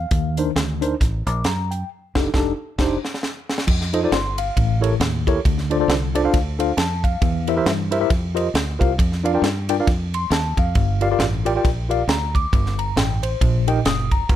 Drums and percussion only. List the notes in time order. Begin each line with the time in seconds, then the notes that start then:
0.11 kick, closed hi-hat
0.37 closed hi-hat
0.56 snare, closed hi-hat
0.82 closed hi-hat
1.01 kick, snare, closed hi-hat
1.27 closed hi-hat
1.44 snare, closed hi-hat
1.72 closed hi-hat
2.15 kick, snare, crash
2.34 kick, snare
2.79 kick, snare, crash
3.05 snare
3.14 snare
3.23 snare
3.49 snare
3.58 snare
3.68 kick, crash
3.81 snare
3.93 ride
4.12 snare, ride
4.38 ride
4.57 kick, ride
4.84 ride
5.01 snare, ride
5.27 kick, ride
5.45 kick, ride
5.58 snare
5.71 ride
5.90 snare, ride
6.15 ride
6.33 kick, snare, ride
6.60 ride
6.78 snare, ride
7.04 kick, ride
7.22 kick, ride
7.47 ride
7.66 snare, ride
7.92 ride
8.10 kick, snare, ride
8.37 ride
8.55 snare, ride
8.81 kick, ride
8.99 kick, ride
9.12 snare
9.25 ride
9.44 snare, ride
9.69 ride
9.87 kick, snare, ride
10.14 ride
10.31 snare, ride
10.57 kick, ride
10.75 kick, ride
11.01 ride
11.20 snare, ride
11.46 ride
11.65 kick, snare, ride
11.91 ride
12.09 snare, ride
12.35 kick, ride
12.53 kick, ride
12.66 snare
12.79 ride
12.97 snare, ride
13.23 ride
13.41 kick, ride
13.68 ride
13.85 snare, ride
14.11 kick, ride
14.29 kick, ride